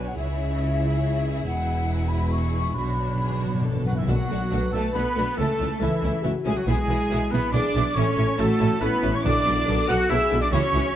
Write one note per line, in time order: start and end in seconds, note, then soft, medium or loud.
0.00 0.15 B1 soft
0.00 0.15 B2 soft
0.00 0.15 B3 soft
0.00 0.15 D4 soft
0.00 0.15 B4 soft
0.00 1.42 C#5 soft
0.00 1.43 C#5 soft
0.07 0.18 F#5 soft
0.17 1.47 C#2 medium
0.17 1.47 C#3 soft
0.17 2.73 G#3 soft
0.17 2.72 E4 soft
0.17 2.72 G#4 soft
0.17 1.44 E5 medium
1.45 2.74 E1 medium
1.45 2.74 E2 medium
1.45 2.72 B3 medium
1.45 2.76 B4 medium
1.45 2.09 F#5 medium
2.09 2.32 B5 medium
2.31 2.75 C#6 medium
2.75 3.86 B1 soft
2.75 2.83 B2 soft
2.75 3.85 B2 soft
2.75 3.83 F#3 soft
2.75 3.88 D4 soft
2.75 3.16 F#4 soft
2.75 3.87 C#5 soft
2.75 3.83 C#5 soft
2.75 3.64 B5 medium
2.85 2.90 B2 soft
2.91 2.98 B2 soft
2.99 3.06 B2 soft
3.07 3.14 B2 soft
3.15 3.21 B2 soft
3.15 3.40 G#4 soft
3.22 3.29 B2 soft
3.30 3.37 B2 soft
3.38 3.44 B2 soft
3.42 3.53 B2 soft
3.42 3.64 F#4 soft
3.54 3.60 B2 soft
3.62 3.68 B2 soft
3.62 3.86 A4 soft
3.69 3.74 B2 medium
3.75 3.83 B2 soft
3.84 3.91 B2 soft
3.84 3.91 F#3 soft
3.84 3.99 F#4 soft
3.84 3.96 F#4 soft
3.84 4.08 B4 soft
3.84 3.96 F#5 soft
3.84 3.97 F#5 soft
3.92 3.98 B2 medium
3.92 4.07 E3 soft
3.92 4.02 E4 soft
3.92 4.07 E5 soft
3.98 4.06 B2 medium
3.98 4.11 E4 soft
3.98 4.08 E5 soft
4.07 4.16 B1 medium
4.07 4.69 B2 medium
4.07 4.16 D3 soft
4.07 4.73 F#3 medium
4.07 4.16 A3 soft
4.07 4.15 D4 soft
4.07 4.15 F#4 soft
4.07 4.72 F#4 medium
4.07 4.49 F#4 medium
4.07 4.71 F#4 medium
4.07 4.71 F#5 medium
4.07 4.73 F#5 medium
4.30 4.38 B1 medium
4.30 4.38 D3 soft
4.30 4.38 A3 soft
4.30 4.39 D4 soft
4.30 4.39 F#4 soft
4.51 4.59 B1 soft
4.51 4.60 D3 medium
4.51 4.59 A3 soft
4.51 4.59 D4 soft
4.51 4.60 F#4 soft
4.51 5.38 B4 medium
4.72 4.81 B1 medium
4.72 4.82 D3 soft
4.72 4.95 A3 medium
4.72 4.82 A3 soft
4.72 4.82 D4 soft
4.72 4.82 F#4 soft
4.72 4.82 A4 medium
4.72 4.83 A4 medium
4.72 4.79 A5 medium
4.72 4.95 A5 medium
4.93 5.03 B1 soft
4.93 5.02 D3 soft
4.93 5.03 A3 soft
4.93 5.38 B3 medium
4.93 5.03 D4 soft
4.93 5.03 F#4 soft
4.93 5.37 B4 medium
4.93 5.39 B4 medium
4.93 5.36 B5 medium
4.93 5.37 B5 medium
5.15 5.25 B1 medium
5.15 5.24 D3 soft
5.15 5.23 A3 soft
5.15 5.26 D4 soft
5.15 5.25 F#4 soft
5.35 5.47 C#2 medium
5.35 5.46 E3 medium
5.35 5.46 A3 soft
5.35 5.81 A3 medium
5.35 6.21 A4 medium
5.35 5.81 A4 medium
5.35 5.80 A4 medium
5.35 5.80 A5 medium
5.40 5.48 C#4 medium
5.40 5.48 E4 medium
5.59 5.69 C#2 medium
5.59 5.67 E3 soft
5.59 5.67 A3 soft
5.59 5.70 C#4 soft
5.59 5.69 E4 soft
5.80 5.90 C#2 medium
5.80 5.88 E3 medium
5.80 6.24 E3 medium
5.80 5.89 A3 soft
5.80 5.90 C#4 medium
5.80 6.24 E4 medium
5.80 5.90 E4 medium
5.80 6.24 E4 medium
5.80 6.24 E5 medium
6.01 6.11 C#2 medium
6.01 6.09 E3 soft
6.01 6.09 A3 medium
6.01 6.12 C#4 soft
6.01 6.12 E4 soft
6.22 6.32 C#2 soft
6.22 6.32 E3 soft
6.22 6.32 A3 soft
6.22 6.32 C#4 soft
6.22 6.31 E4 soft
6.22 6.66 F#4 medium
6.45 6.54 C#2 medium
6.45 6.54 E3 soft
6.45 6.51 G#3 medium
6.45 6.54 A3 soft
6.45 6.53 C#4 medium
6.45 6.53 E4 soft
6.45 6.59 G#4 medium
6.45 6.58 G#4 medium
6.45 6.56 G#5 medium
6.45 6.52 G#5 medium
6.56 6.67 F#3 soft
6.56 6.66 F#4 medium
6.56 6.68 F#4 soft
6.56 6.67 F#5 medium
6.56 6.68 F#5 soft
6.67 6.75 B1 medium
6.67 6.76 E3 medium
6.67 7.31 G#3 medium
6.67 6.75 B3 medium
6.67 7.53 E4 medium
6.67 6.76 E4 medium
6.67 7.32 G#4 medium
6.67 7.31 G#4 medium
6.67 6.77 G#4 medium
6.67 7.32 G#5 medium
6.67 7.31 G#5 medium
6.88 6.96 B1 medium
6.88 6.97 E3 soft
6.88 6.97 B3 soft
6.88 6.97 E4 soft
6.88 6.97 G#4 soft
7.10 7.19 B1 medium
7.10 7.19 E3 medium
7.10 7.18 B3 medium
7.10 7.19 E4 medium
7.10 7.18 G#4 medium
7.30 7.41 B1 medium
7.30 7.41 E3 medium
7.30 7.53 B3 medium
7.30 7.41 B3 medium
7.30 7.41 E4 soft
7.30 7.41 G#4 soft
7.30 7.51 B4 medium
7.30 7.53 B4 medium
7.30 7.54 B5 medium
7.30 7.53 B5 medium
7.52 7.61 B1 medium
7.52 7.63 E3 medium
7.52 7.63 B3 medium
7.52 7.95 D4 medium
7.52 7.61 E4 soft
7.52 7.61 G#4 medium
7.52 7.95 G#4 medium
7.52 7.96 D5 medium
7.52 7.98 D5 medium
7.52 7.95 D6 medium
7.52 7.97 D6 medium
7.75 7.83 B1 medium
7.75 7.84 E3 medium
7.75 7.83 B3 medium
7.75 7.84 E4 medium
7.75 7.84 G#4 medium
7.94 8.04 A1 medium
7.94 8.05 A3 medium
7.94 8.38 C#4 medium
7.94 8.05 C#4 medium
7.94 8.04 E4 medium
7.94 8.37 A4 medium
7.94 8.04 A4 medium
7.94 8.42 C#5 medium
7.94 8.39 C#5 medium
7.94 8.39 C#6 medium
8.17 8.26 A1 medium
8.17 8.26 A3 medium
8.17 8.26 C#4 medium
8.17 8.25 E4 medium
8.17 8.25 A4 medium
8.38 8.48 A1 medium
8.38 8.46 A3 medium
8.38 8.81 A3 medium
8.38 8.46 C#4 medium
8.38 8.46 E4 medium
8.38 8.82 F#4 medium
8.38 8.46 A4 medium
8.38 8.83 A4 medium
8.38 8.80 A4 medium
8.38 8.83 A5 medium
8.58 8.69 A1 medium
8.58 8.69 A3 medium
8.58 8.69 C#4 medium
8.58 8.67 E4 medium
8.58 8.66 A4 medium
8.79 8.91 A1 medium
8.79 8.89 A3 medium
8.79 9.13 B3 medium
8.79 8.89 C#4 medium
8.79 8.87 E4 medium
8.79 9.66 E4 medium
8.79 8.88 A4 medium
8.79 9.16 B4 medium
8.79 9.13 B4 medium
8.79 9.14 B5 loud
8.84 9.15 B5 medium
9.02 9.13 A1 medium
9.02 9.11 A3 medium
9.02 9.11 C#4 medium
9.02 9.10 E4 medium
9.02 9.10 A4 medium
9.14 9.25 C#4 medium
9.14 9.24 C#5 medium
9.14 9.25 C#5 medium
9.14 9.25 C#6 medium
9.14 9.20 C#6 medium
9.24 9.33 B1 medium
9.24 9.85 B2 medium
9.24 9.32 F#3 medium
9.24 9.32 B3 medium
9.24 9.33 D4 medium
9.24 9.88 D4 medium
9.24 9.33 A4 medium
9.24 9.87 D5 loud
9.24 9.88 D5 loud
9.24 9.89 D6 loud
9.24 9.88 D6 medium
9.46 9.55 B1 medium
9.46 9.55 F#3 medium
9.46 9.54 B3 soft
9.46 9.54 D4 medium
9.46 9.54 A4 medium
9.66 9.76 B1 medium
9.66 9.76 F#3 medium
9.66 9.75 B3 medium
9.66 9.74 D4 medium
9.66 10.08 A4 medium
9.66 9.74 A4 medium
9.87 9.97 B1 medium
9.87 9.96 F#3 medium
9.87 9.95 B3 medium
9.87 9.96 D4 medium
9.87 10.10 F#4 loud
9.87 9.96 A4 medium
9.87 10.11 F#5 medium
9.87 10.09 F#5 medium
9.87 9.95 F#6 medium
9.87 10.10 F#6 loud
10.09 10.19 B1 medium
10.09 10.18 F#3 medium
10.09 10.18 B3 medium
10.09 10.17 D4 medium
10.09 10.42 E4 medium
10.09 10.52 G#4 medium
10.09 10.17 A4 medium
10.09 10.42 E5 medium
10.09 10.43 E5 medium
10.09 10.41 E6 loud
10.09 10.42 E6 loud
10.29 10.41 B1 medium
10.29 10.40 F#3 medium
10.29 10.40 B3 medium
10.29 10.37 D4 medium
10.29 10.37 A4 medium
10.42 10.52 D4 medium
10.42 10.54 D5 medium
10.42 10.55 D5 medium
10.42 10.46 D6 medium
10.42 10.53 D6 medium
10.51 10.61 C#2 medium
10.51 10.61 E3 medium
10.51 10.60 G#3 medium
10.51 10.96 C#4 medium
10.51 10.61 E4 medium
10.51 10.96 F#4 medium
10.51 10.60 G#4 medium
10.51 10.96 C#5 medium
10.51 10.96 C#6 medium
10.73 10.81 C#2 medium
10.73 10.83 E3 medium
10.73 10.83 G#3 medium
10.73 10.82 E4 medium
10.73 10.82 G#4 medium